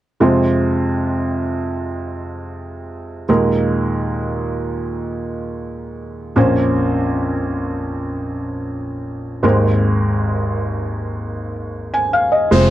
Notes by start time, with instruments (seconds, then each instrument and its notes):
0.20 felt piano F2 C3 G#3 F4 C5
3.29 felt piano D#2 A#2 G#3 D#4 A#4
6.36 felt piano A#1 F2 A#3 C#4 C5
9.43 felt piano G#1 D#2 G#3 C4 A#4
11.94 felt piano G#5
12.13 felt piano F5
12.32 felt piano D#5
12.51 fingered electric bass F1, felt piano C3 G#3 F4 C5, downlifter